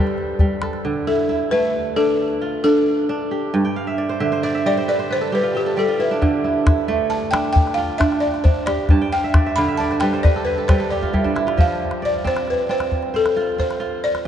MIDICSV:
0, 0, Header, 1, 4, 480
1, 0, Start_track
1, 0, Tempo, 446761
1, 915, Time_signature, 12, 3, 24, 8
1, 15337, End_track
2, 0, Start_track
2, 0, Title_t, "Balafon"
2, 0, Program_c, 0, 12
2, 0, Note_on_c, 0, 74, 75
2, 383, Note_off_c, 0, 74, 0
2, 1154, Note_on_c, 0, 69, 84
2, 1626, Note_on_c, 0, 71, 103
2, 1651, Note_off_c, 0, 69, 0
2, 2110, Note_on_c, 0, 69, 91
2, 2127, Note_off_c, 0, 71, 0
2, 2822, Note_off_c, 0, 69, 0
2, 2835, Note_on_c, 0, 69, 97
2, 3996, Note_off_c, 0, 69, 0
2, 4764, Note_on_c, 0, 76, 90
2, 5011, Note_off_c, 0, 76, 0
2, 5013, Note_on_c, 0, 74, 89
2, 5241, Note_off_c, 0, 74, 0
2, 5253, Note_on_c, 0, 74, 92
2, 5495, Note_off_c, 0, 74, 0
2, 5507, Note_on_c, 0, 72, 95
2, 5742, Note_off_c, 0, 72, 0
2, 5747, Note_on_c, 0, 71, 95
2, 5982, Note_off_c, 0, 71, 0
2, 5982, Note_on_c, 0, 67, 75
2, 6196, Note_off_c, 0, 67, 0
2, 6220, Note_on_c, 0, 69, 79
2, 6447, Note_on_c, 0, 71, 74
2, 6459, Note_off_c, 0, 69, 0
2, 6669, Note_off_c, 0, 71, 0
2, 7627, Note_on_c, 0, 81, 84
2, 7851, Note_on_c, 0, 79, 95
2, 7883, Note_off_c, 0, 81, 0
2, 8073, Note_off_c, 0, 79, 0
2, 8086, Note_on_c, 0, 79, 102
2, 8318, Note_on_c, 0, 77, 95
2, 8327, Note_off_c, 0, 79, 0
2, 8576, Note_on_c, 0, 76, 98
2, 8590, Note_off_c, 0, 77, 0
2, 8814, Note_on_c, 0, 74, 82
2, 8838, Note_off_c, 0, 76, 0
2, 8929, Note_off_c, 0, 74, 0
2, 9067, Note_on_c, 0, 72, 76
2, 9305, Note_on_c, 0, 74, 73
2, 9323, Note_off_c, 0, 72, 0
2, 9537, Note_off_c, 0, 74, 0
2, 9804, Note_on_c, 0, 79, 104
2, 10268, Note_on_c, 0, 83, 103
2, 10299, Note_off_c, 0, 79, 0
2, 10502, Note_on_c, 0, 81, 80
2, 10524, Note_off_c, 0, 83, 0
2, 10743, Note_on_c, 0, 79, 93
2, 10761, Note_off_c, 0, 81, 0
2, 10993, Note_on_c, 0, 74, 95
2, 11001, Note_off_c, 0, 79, 0
2, 11224, Note_on_c, 0, 71, 75
2, 11246, Note_off_c, 0, 74, 0
2, 11475, Note_on_c, 0, 72, 85
2, 11481, Note_off_c, 0, 71, 0
2, 11585, Note_off_c, 0, 72, 0
2, 11715, Note_on_c, 0, 74, 65
2, 12165, Note_off_c, 0, 74, 0
2, 12470, Note_on_c, 0, 77, 89
2, 12903, Note_off_c, 0, 77, 0
2, 12949, Note_on_c, 0, 74, 90
2, 13051, Note_off_c, 0, 74, 0
2, 13187, Note_on_c, 0, 72, 95
2, 13420, Note_off_c, 0, 72, 0
2, 13433, Note_on_c, 0, 71, 80
2, 13533, Note_off_c, 0, 71, 0
2, 13654, Note_on_c, 0, 72, 88
2, 14140, Note_off_c, 0, 72, 0
2, 14141, Note_on_c, 0, 69, 93
2, 14608, Note_on_c, 0, 72, 82
2, 14623, Note_off_c, 0, 69, 0
2, 15083, Note_on_c, 0, 74, 86
2, 15096, Note_off_c, 0, 72, 0
2, 15337, Note_off_c, 0, 74, 0
2, 15337, End_track
3, 0, Start_track
3, 0, Title_t, "Kora"
3, 0, Program_c, 1, 46
3, 0, Note_on_c, 1, 43, 77
3, 0, Note_on_c, 1, 50, 75
3, 0, Note_on_c, 1, 55, 69
3, 0, Note_on_c, 1, 69, 59
3, 0, Note_on_c, 1, 72, 61
3, 264, Note_off_c, 1, 72, 0
3, 418, Note_off_c, 1, 55, 0
3, 431, Note_on_c, 1, 55, 63
3, 540, Note_off_c, 1, 43, 0
3, 670, Note_off_c, 1, 69, 0
3, 674, Note_on_c, 1, 69, 64
3, 897, Note_off_c, 1, 50, 0
3, 910, Note_on_c, 1, 50, 72
3, 969, Note_off_c, 1, 55, 0
3, 1152, Note_on_c, 1, 64, 63
3, 1381, Note_off_c, 1, 64, 0
3, 1386, Note_on_c, 1, 64, 60
3, 1636, Note_on_c, 1, 57, 77
3, 2090, Note_off_c, 1, 69, 0
3, 2109, Note_on_c, 1, 62, 86
3, 2595, Note_on_c, 1, 65, 63
3, 2659, Note_off_c, 1, 64, 0
3, 2833, Note_off_c, 1, 62, 0
3, 2838, Note_on_c, 1, 62, 82
3, 2841, Note_off_c, 1, 62, 0
3, 2841, Note_on_c, 1, 62, 59
3, 3318, Note_off_c, 1, 62, 0
3, 3322, Note_on_c, 1, 62, 75
3, 3424, Note_off_c, 1, 50, 0
3, 3558, Note_on_c, 1, 67, 60
3, 3781, Note_off_c, 1, 57, 0
3, 3800, Note_on_c, 1, 43, 87
3, 3918, Note_on_c, 1, 79, 76
3, 4042, Note_on_c, 1, 77, 68
3, 4159, Note_on_c, 1, 76, 61
3, 4224, Note_off_c, 1, 65, 0
3, 4276, Note_on_c, 1, 74, 70
3, 4397, Note_on_c, 1, 72, 69
3, 4511, Note_off_c, 1, 76, 0
3, 4516, Note_on_c, 1, 50, 81
3, 4516, Note_on_c, 1, 76, 75
3, 4580, Note_off_c, 1, 77, 0
3, 4636, Note_off_c, 1, 72, 0
3, 4640, Note_on_c, 1, 72, 74
3, 4756, Note_off_c, 1, 74, 0
3, 4760, Note_on_c, 1, 74, 70
3, 4881, Note_off_c, 1, 76, 0
3, 4885, Note_on_c, 1, 76, 66
3, 4919, Note_off_c, 1, 79, 0
3, 5002, Note_off_c, 1, 74, 0
3, 5006, Note_on_c, 1, 55, 88
3, 5006, Note_on_c, 1, 74, 75
3, 5075, Note_off_c, 1, 67, 0
3, 5124, Note_off_c, 1, 72, 0
3, 5127, Note_off_c, 1, 62, 0
3, 5128, Note_on_c, 1, 72, 75
3, 5243, Note_on_c, 1, 71, 66
3, 5357, Note_off_c, 1, 72, 0
3, 5361, Note_on_c, 1, 72, 70
3, 5479, Note_off_c, 1, 71, 0
3, 5484, Note_on_c, 1, 71, 70
3, 5599, Note_on_c, 1, 69, 70
3, 5704, Note_off_c, 1, 55, 0
3, 5716, Note_on_c, 1, 55, 67
3, 5718, Note_on_c, 1, 67, 61
3, 5836, Note_on_c, 1, 65, 66
3, 5900, Note_off_c, 1, 76, 0
3, 5954, Note_off_c, 1, 67, 0
3, 5958, Note_on_c, 1, 67, 60
3, 6078, Note_off_c, 1, 69, 0
3, 6083, Note_on_c, 1, 69, 63
3, 6186, Note_off_c, 1, 55, 0
3, 6197, Note_off_c, 1, 74, 0
3, 6198, Note_on_c, 1, 55, 77
3, 6200, Note_off_c, 1, 67, 0
3, 6204, Note_on_c, 1, 67, 66
3, 6314, Note_off_c, 1, 43, 0
3, 6318, Note_off_c, 1, 65, 0
3, 6322, Note_on_c, 1, 65, 65
3, 6439, Note_on_c, 1, 64, 69
3, 6566, Note_on_c, 1, 62, 76
3, 6637, Note_off_c, 1, 72, 0
3, 6666, Note_off_c, 1, 50, 0
3, 6679, Note_on_c, 1, 50, 77
3, 6738, Note_off_c, 1, 55, 0
3, 6805, Note_off_c, 1, 71, 0
3, 6918, Note_off_c, 1, 64, 0
3, 6922, Note_on_c, 1, 64, 65
3, 6986, Note_off_c, 1, 65, 0
3, 7152, Note_off_c, 1, 64, 0
3, 7156, Note_on_c, 1, 64, 62
3, 7394, Note_on_c, 1, 57, 90
3, 7498, Note_off_c, 1, 69, 0
3, 7721, Note_off_c, 1, 67, 0
3, 7867, Note_off_c, 1, 62, 0
3, 7871, Note_on_c, 1, 62, 83
3, 8354, Note_on_c, 1, 65, 65
3, 8419, Note_off_c, 1, 64, 0
3, 8588, Note_off_c, 1, 62, 0
3, 8593, Note_on_c, 1, 62, 69
3, 8595, Note_off_c, 1, 62, 0
3, 8595, Note_on_c, 1, 62, 64
3, 9065, Note_off_c, 1, 62, 0
3, 9070, Note_on_c, 1, 62, 66
3, 9193, Note_off_c, 1, 50, 0
3, 9319, Note_on_c, 1, 67, 67
3, 9539, Note_off_c, 1, 57, 0
3, 9564, Note_on_c, 1, 43, 78
3, 9567, Note_on_c, 1, 81, 67
3, 9685, Note_on_c, 1, 79, 67
3, 9803, Note_on_c, 1, 77, 67
3, 9926, Note_on_c, 1, 76, 65
3, 9991, Note_off_c, 1, 65, 0
3, 10045, Note_on_c, 1, 74, 64
3, 10163, Note_off_c, 1, 76, 0
3, 10168, Note_on_c, 1, 76, 65
3, 10232, Note_off_c, 1, 77, 0
3, 10289, Note_on_c, 1, 50, 82
3, 10291, Note_on_c, 1, 77, 68
3, 10399, Note_off_c, 1, 76, 0
3, 10403, Note_on_c, 1, 76, 62
3, 10501, Note_off_c, 1, 81, 0
3, 10521, Note_off_c, 1, 74, 0
3, 10525, Note_on_c, 1, 74, 71
3, 10653, Note_on_c, 1, 72, 60
3, 10686, Note_off_c, 1, 79, 0
3, 10770, Note_on_c, 1, 55, 74
3, 10770, Note_on_c, 1, 71, 74
3, 10836, Note_off_c, 1, 67, 0
3, 10874, Note_off_c, 1, 62, 0
3, 10885, Note_off_c, 1, 72, 0
3, 10889, Note_on_c, 1, 72, 72
3, 11003, Note_off_c, 1, 71, 0
3, 11008, Note_on_c, 1, 71, 67
3, 11128, Note_on_c, 1, 69, 66
3, 11238, Note_off_c, 1, 71, 0
3, 11243, Note_on_c, 1, 71, 66
3, 11307, Note_off_c, 1, 72, 0
3, 11363, Note_off_c, 1, 69, 0
3, 11364, Note_off_c, 1, 77, 0
3, 11367, Note_on_c, 1, 69, 60
3, 11475, Note_off_c, 1, 55, 0
3, 11485, Note_off_c, 1, 71, 0
3, 11487, Note_on_c, 1, 55, 74
3, 11490, Note_on_c, 1, 71, 63
3, 11514, Note_off_c, 1, 76, 0
3, 11598, Note_off_c, 1, 69, 0
3, 11602, Note_on_c, 1, 69, 62
3, 11715, Note_off_c, 1, 74, 0
3, 11730, Note_on_c, 1, 67, 59
3, 11844, Note_on_c, 1, 65, 62
3, 11952, Note_off_c, 1, 55, 0
3, 11960, Note_on_c, 1, 64, 56
3, 11965, Note_on_c, 1, 55, 67
3, 12078, Note_off_c, 1, 43, 0
3, 12080, Note_on_c, 1, 62, 69
3, 12195, Note_off_c, 1, 64, 0
3, 12199, Note_on_c, 1, 64, 72
3, 12264, Note_off_c, 1, 65, 0
3, 12320, Note_on_c, 1, 65, 71
3, 12435, Note_on_c, 1, 53, 75
3, 12496, Note_off_c, 1, 50, 0
3, 12496, Note_off_c, 1, 55, 0
3, 12499, Note_off_c, 1, 64, 0
3, 12811, Note_off_c, 1, 71, 0
3, 12916, Note_on_c, 1, 74, 57
3, 13018, Note_off_c, 1, 69, 0
3, 13155, Note_on_c, 1, 60, 70
3, 13247, Note_off_c, 1, 67, 0
3, 13632, Note_off_c, 1, 60, 0
3, 13636, Note_on_c, 1, 60, 77
3, 13884, Note_off_c, 1, 62, 0
3, 13946, Note_off_c, 1, 65, 0
3, 14106, Note_off_c, 1, 74, 0
3, 14115, Note_on_c, 1, 72, 58
3, 14360, Note_on_c, 1, 65, 75
3, 14590, Note_off_c, 1, 72, 0
3, 14594, Note_on_c, 1, 72, 60
3, 14821, Note_off_c, 1, 65, 0
3, 14826, Note_on_c, 1, 65, 68
3, 14949, Note_off_c, 1, 53, 0
3, 15337, Note_off_c, 1, 60, 0
3, 15337, Note_off_c, 1, 65, 0
3, 15337, Note_off_c, 1, 72, 0
3, 15337, End_track
4, 0, Start_track
4, 0, Title_t, "Calabash"
4, 75, Note_on_c, 9, 38, 19
4, 183, Note_off_c, 9, 38, 0
4, 193, Note_on_c, 9, 38, 16
4, 300, Note_off_c, 9, 38, 0
4, 421, Note_on_c, 9, 36, 59
4, 528, Note_off_c, 9, 36, 0
4, 662, Note_on_c, 9, 38, 63
4, 769, Note_off_c, 9, 38, 0
4, 788, Note_on_c, 9, 38, 18
4, 895, Note_off_c, 9, 38, 0
4, 6686, Note_on_c, 9, 36, 80
4, 6793, Note_off_c, 9, 36, 0
4, 7163, Note_on_c, 9, 36, 70
4, 7163, Note_on_c, 9, 38, 80
4, 7270, Note_off_c, 9, 36, 0
4, 7270, Note_off_c, 9, 38, 0
4, 7403, Note_on_c, 9, 38, 22
4, 7511, Note_off_c, 9, 38, 0
4, 7641, Note_on_c, 9, 38, 21
4, 7749, Note_off_c, 9, 38, 0
4, 7881, Note_on_c, 9, 38, 82
4, 7988, Note_off_c, 9, 38, 0
4, 8002, Note_on_c, 9, 38, 21
4, 8109, Note_off_c, 9, 38, 0
4, 8122, Note_on_c, 9, 36, 64
4, 8229, Note_off_c, 9, 36, 0
4, 8243, Note_on_c, 9, 38, 22
4, 8350, Note_off_c, 9, 38, 0
4, 8603, Note_on_c, 9, 36, 74
4, 8603, Note_on_c, 9, 38, 72
4, 8710, Note_off_c, 9, 36, 0
4, 8710, Note_off_c, 9, 38, 0
4, 8727, Note_on_c, 9, 38, 22
4, 8834, Note_off_c, 9, 38, 0
4, 8960, Note_on_c, 9, 38, 22
4, 9067, Note_off_c, 9, 38, 0
4, 9078, Note_on_c, 9, 36, 69
4, 9185, Note_off_c, 9, 36, 0
4, 9315, Note_on_c, 9, 38, 68
4, 9422, Note_off_c, 9, 38, 0
4, 9549, Note_on_c, 9, 36, 69
4, 9549, Note_on_c, 9, 38, 21
4, 9657, Note_off_c, 9, 36, 0
4, 9657, Note_off_c, 9, 38, 0
4, 10036, Note_on_c, 9, 36, 75
4, 10036, Note_on_c, 9, 38, 76
4, 10143, Note_off_c, 9, 36, 0
4, 10143, Note_off_c, 9, 38, 0
4, 10281, Note_on_c, 9, 38, 21
4, 10389, Note_off_c, 9, 38, 0
4, 10530, Note_on_c, 9, 38, 20
4, 10637, Note_off_c, 9, 38, 0
4, 10646, Note_on_c, 9, 38, 21
4, 10751, Note_off_c, 9, 38, 0
4, 10751, Note_on_c, 9, 38, 66
4, 10858, Note_off_c, 9, 38, 0
4, 10881, Note_on_c, 9, 38, 20
4, 10989, Note_off_c, 9, 38, 0
4, 11007, Note_on_c, 9, 36, 67
4, 11115, Note_off_c, 9, 36, 0
4, 11485, Note_on_c, 9, 36, 67
4, 11485, Note_on_c, 9, 38, 70
4, 11593, Note_off_c, 9, 36, 0
4, 11593, Note_off_c, 9, 38, 0
4, 11603, Note_on_c, 9, 38, 22
4, 11710, Note_off_c, 9, 38, 0
4, 11849, Note_on_c, 9, 36, 34
4, 11956, Note_off_c, 9, 36, 0
4, 11969, Note_on_c, 9, 36, 43
4, 12076, Note_off_c, 9, 36, 0
4, 12093, Note_on_c, 9, 36, 45
4, 12201, Note_off_c, 9, 36, 0
4, 12209, Note_on_c, 9, 38, 52
4, 12317, Note_off_c, 9, 38, 0
4, 12335, Note_on_c, 9, 38, 51
4, 12442, Note_off_c, 9, 38, 0
4, 12447, Note_on_c, 9, 36, 65
4, 12555, Note_off_c, 9, 36, 0
4, 12798, Note_on_c, 9, 38, 40
4, 12905, Note_off_c, 9, 38, 0
4, 13166, Note_on_c, 9, 36, 54
4, 13166, Note_on_c, 9, 38, 20
4, 13273, Note_off_c, 9, 36, 0
4, 13273, Note_off_c, 9, 38, 0
4, 13286, Note_on_c, 9, 38, 46
4, 13393, Note_off_c, 9, 38, 0
4, 13404, Note_on_c, 9, 38, 18
4, 13511, Note_off_c, 9, 38, 0
4, 13644, Note_on_c, 9, 38, 21
4, 13752, Note_off_c, 9, 38, 0
4, 13756, Note_on_c, 9, 38, 49
4, 13863, Note_off_c, 9, 38, 0
4, 13878, Note_on_c, 9, 36, 51
4, 13985, Note_off_c, 9, 36, 0
4, 13994, Note_on_c, 9, 38, 18
4, 14102, Note_off_c, 9, 38, 0
4, 14127, Note_on_c, 9, 38, 19
4, 14235, Note_off_c, 9, 38, 0
4, 14242, Note_on_c, 9, 38, 45
4, 14350, Note_off_c, 9, 38, 0
4, 14604, Note_on_c, 9, 36, 51
4, 14712, Note_off_c, 9, 36, 0
4, 14726, Note_on_c, 9, 38, 44
4, 14833, Note_off_c, 9, 38, 0
4, 14839, Note_on_c, 9, 38, 17
4, 14947, Note_off_c, 9, 38, 0
4, 15201, Note_on_c, 9, 38, 39
4, 15308, Note_off_c, 9, 38, 0
4, 15337, End_track
0, 0, End_of_file